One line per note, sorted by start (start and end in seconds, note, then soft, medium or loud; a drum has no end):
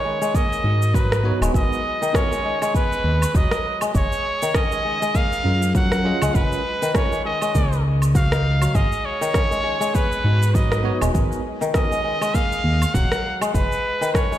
0.00 1.96 D#3 loud
0.00 1.48 C#4 medium
0.00 0.37 C#5 medium
0.04 0.20 G#3 medium
0.22 1.40 G#3 loud
0.22 shaker medium
0.35 2.28 A#3 medium
0.35 0.96 D#5 loud
0.35 kick loud
0.35 shaker medium
0.53 shaker soft
0.64 1.32 G#2 medium
0.64 1.21 D#4 medium
0.64 1.22 F#4 medium
0.64 1.22 A#4 medium
0.82 shaker medium
0.94 2.05 F#3 medium
0.94 1.42 B4 medium
0.94 kick loud
0.94 shaker medium
1.12 cross-stick medium
1.12 shaker soft
1.23 1.51 B3 medium
1.23 1.51 D#4 medium
1.23 1.52 F#4 medium
1.23 1.52 C#5 loud
1.41 1.50 D#1 medium
1.41 1.53 G#3 loud
1.41 low woodblock medium
1.41 shaker medium
1.53 1.66 G#1 loud
1.53 2.05 G#3 medium
1.53 1.80 B3 medium
1.53 1.80 D#4 medium
1.53 1.81 F#4 medium
1.53 1.81 A#4 medium
1.53 2.17 D#5 loud
1.53 kick loud
1.53 shaker medium
1.73 shaker soft
2.02 4.00 D#3 loud
2.02 shaker medium
2.13 2.32 B3 medium
2.13 3.89 C#4 medium
2.13 2.32 D#4 medium
2.13 2.32 F#4 medium
2.13 2.33 A#4 medium
2.13 2.75 C#5 loud
2.13 kick loud
2.13 cross-stick medium
2.13 shaker medium
2.32 2.44 G#3 medium
2.32 shaker soft
2.45 2.61 G#3 medium
2.62 3.80 G#3 loud
2.62 low woodblock medium
2.62 shaker medium
2.75 4.61 B3 medium
2.75 3.38 B4 loud
2.75 kick loud
2.75 shaker medium
2.93 shaker soft
3.04 3.25 D#2 loud
3.22 low woodblock medium
3.22 shaker medium
3.34 3.46 D#1 loud
3.34 4.00 F#3 medium
3.34 3.83 D#5 loud
3.34 kick loud
3.34 shaker medium
3.51 cross-stick medium
3.51 shaker soft
3.81 3.94 G#3 loud
3.81 low woodblock medium
3.81 shaker medium
3.95 4.06 F#1 loud
3.95 4.45 G#3 medium
3.95 4.57 C#5 loud
3.95 kick loud
3.95 shaker medium
4.12 shaker soft
4.42 6.76 D#3 loud
4.42 shaker medium
4.54 6.29 C#4 medium
4.54 5.17 D#5 loud
4.54 kick loud
4.54 cross-stick medium
4.54 shaker medium
4.72 4.84 G#3 medium
4.72 shaker soft
4.85 5.01 G#3 medium
5.02 6.21 G#3 loud
5.02 shaker medium
5.15 7.08 A#3 medium
5.15 5.75 F5 loud
5.15 kick loud
5.15 shaker medium
5.33 shaker soft
5.44 6.12 F#2 medium
5.44 6.01 C#4 medium
5.44 6.01 F4 medium
5.44 6.02 G#4 medium
5.44 6.02 A#4 medium
5.62 shaker medium
5.75 6.85 F#3 medium
5.75 6.37 F#5 loud
5.75 kick loud
5.75 shaker medium
5.92 cross-stick medium
5.92 shaker soft
6.04 6.31 C#4 loud
6.04 6.31 F4 medium
6.04 6.32 G#4 medium
6.04 6.32 D#5 loud
6.22 6.30 C#2 medium
6.22 6.34 G#3 loud
6.22 low woodblock medium
6.22 shaker medium
6.34 6.46 F#1 loud
6.34 6.85 G#3 medium
6.34 6.60 C#4 medium
6.34 6.61 F4 medium
6.34 6.61 G#4 medium
6.34 6.61 A#4 medium
6.34 6.97 B4 loud
6.34 kick loud
6.34 shaker medium
6.52 shaker soft
6.82 8.80 D#3 loud
6.82 shaker medium
6.94 7.12 C#4 medium
6.94 8.68 C#4 medium
6.94 7.13 F4 medium
6.94 7.13 G#4 medium
6.94 7.13 A#4 medium
6.94 7.24 C#5 loud
6.94 kick loud
6.94 cross-stick medium
6.94 shaker medium
7.12 7.24 G#3 medium
7.12 shaker soft
7.25 7.41 G#3 medium
7.25 7.84 D#5 loud
7.41 8.73 G#3 loud
7.41 low woodblock medium
7.41 shaker medium
7.55 8.68 C#2 loud
7.55 9.48 A#3 medium
7.55 kick medium
7.55 shaker medium
7.73 shaker soft
8.02 low woodblock medium
8.02 shaker medium
8.15 9.61 F#4 loud
8.15 8.77 F5 loud
8.15 kick loud
8.15 shaker medium
8.31 9.94 D#4 medium
8.31 cross-stick medium
8.31 shaker soft
8.61 8.80 F#3 medium
8.61 low woodblock medium
8.61 shaker medium
8.74 8.86 G#1 loud
8.74 9.25 G#3 medium
8.74 9.07 D#5 loud
8.74 kick loud
8.74 shaker medium
8.92 shaker soft
9.05 9.97 C#5 loud
9.21 11.55 D#3 loud
9.21 shaker medium
9.34 11.08 C#4 medium
9.34 kick loud
9.34 cross-stick medium
9.34 shaker medium
9.51 9.62 G#3 medium
9.51 shaker soft
9.63 9.79 G#3 medium
9.80 11.00 G#3 loud
9.80 shaker medium
9.93 11.80 B3 medium
9.93 10.56 B4 loud
9.93 kick medium
9.93 shaker medium
10.12 shaker soft
10.24 10.92 G#2 medium
10.24 10.81 D#4 medium
10.24 10.82 F#4 medium
10.24 10.82 B4 medium
10.43 shaker medium
10.54 11.65 F#3 medium
10.54 11.02 D#5 medium
10.54 kick loud
10.54 shaker medium
10.72 cross-stick medium
10.72 shaker soft
10.83 11.11 B3 loud
10.83 11.11 D#4 loud
10.83 11.11 F#4 medium
10.83 11.12 C#5 loud
11.01 11.10 D#1 medium
11.01 11.13 G#3 loud
11.01 low woodblock medium
11.01 shaker medium
11.13 11.26 G#1 loud
11.13 11.65 G#3 medium
11.13 11.40 B3 medium
11.13 11.40 D#4 medium
11.13 11.41 F#4 medium
11.13 11.41 A#4 medium
11.13 kick medium
11.13 shaker medium
11.32 shaker soft
11.61 13.60 D#3 loud
11.61 shaker medium
11.73 11.92 B3 medium
11.73 13.48 C#4 medium
11.73 11.92 D#4 medium
11.73 11.93 F#4 medium
11.73 11.93 A#4 medium
11.73 12.36 D#5 loud
11.73 kick loud
11.73 cross-stick medium
11.73 shaker medium
11.91 12.03 G#3 medium
11.91 shaker soft
12.04 12.20 G#3 medium
12.21 13.40 G#3 loud
12.21 low woodblock medium
12.21 shaker medium
12.34 14.27 A#3 medium
12.34 12.96 F5 loud
12.34 kick medium
12.34 shaker medium
12.52 shaker soft
12.64 12.85 D#2 loud
12.82 low woodblock medium
12.82 shaker medium
12.94 13.06 D#1 loud
12.94 13.60 F#3 medium
12.94 13.42 F#5 loud
12.94 kick loud
12.94 shaker medium
13.12 cross-stick medium
13.12 shaker soft
13.41 13.53 G#3 loud
13.41 low woodblock medium
13.41 shaker medium
13.54 13.66 F#1 loud
13.54 14.05 G#3 medium
13.54 14.16 B4 loud
13.54 kick loud
13.54 shaker medium
13.72 shaker soft
14.01 14.38 D#3 loud
14.01 shaker medium
14.14 14.38 C#4 medium
14.14 14.38 C#5 loud
14.14 kick loud
14.14 cross-stick medium
14.14 shaker soft
14.32 14.38 G#3 medium
14.32 shaker soft